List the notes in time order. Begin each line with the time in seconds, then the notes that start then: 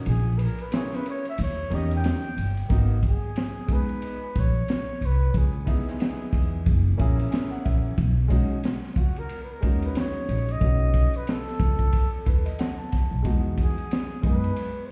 0.06 A#1 G#4, ride
0.38 B4, ride
0.43 A#4
0.58 B4, ride
0.71 A#3 C4 E4 G#4, snare, hi-hat pedal, ride
0.75 C#4 C#5
0.93 B4, snare
1.06 C#5, ride
1.25 E5, ride
1.38 D#2, ride
1.43 C#5
1.70 E2 A#3 C#4 D#4, ride
1.74 G4 D#5
1.91 ride
1.96 G5
2.04 snare, hi-hat pedal, ride
2.37 G1, ride
2.57 ride
2.69 G#1 A#3 B3 D#4, kick, ride
2.73 F#4
3.03 kick, ride
3.07 G#4
3.36 snare, hi-hat pedal, ride
3.67 G#3 B3 D#4, kick, ride
3.72 G#4 B4
3.89 ride
4.02 ride
4.35 A#1, kick, ride
4.39 C#5
4.68 snare, hi-hat pedal, ride
5.01 C2, ride
5.06 B4
5.34 C#2 G#4, kick, ride
5.65 B3 D#4 E4 G#4, kick, ride
5.88 snare
6.00 snare, hi-hat pedal, ride
6.33 E2, kick, ride
6.66 F#1, kick, ride
6.97 A#1 A#3 C#4 E4 G#4 A#5, kick, ride
7.18 G#5, ride
7.31 G#5, snare, hi-hat pedal, ride
7.51 F#5
7.65 A#1 E5, kick, ride
7.98 B1, kick, ride
8.28 G#3 C#4 D#4, kick, ride
8.32 F#4
8.64 snare, hi-hat pedal, ride
8.84 snare
8.96 C#2 F4, kick, ride
9.00 F#4
9.16 A#4, ride
9.29 ride
9.43 B4
9.53 A#4
9.60 D#2 G#3 C#4 D#4, kick, ride
9.65 F#4
9.82 B4, ride
9.95 snare, hi-hat pedal, ride
10.00 C#5
10.29 A#1, ride
10.48 D#5, ride
10.60 B1 A3 C#4 D#4, kick, ride
10.64 F#4
10.94 kick, ride
11.14 B4, ride
11.27 A4, snare, hi-hat pedal, ride
11.48 snare
11.60 C#2, kick, ride
11.79 kick, ride
11.93 kick, ride
12.26 D#2 B4, kick, ride
12.46 D#5, ride
12.59 F#5, snare, hi-hat pedal, ride
12.78 A5
12.92 kick, snare, ride
13.11 B1
13.22 E2 G#3 B3 D#4 F#4, kick, ride
13.58 kick, ride
13.62 G#4
13.78 ride
13.91 snare, hi-hat pedal, ride
14.22 F#2 G#3 B3 D#4, kick, ride
14.26 G#4 B4
14.44 ride
14.56 ride
14.86 C5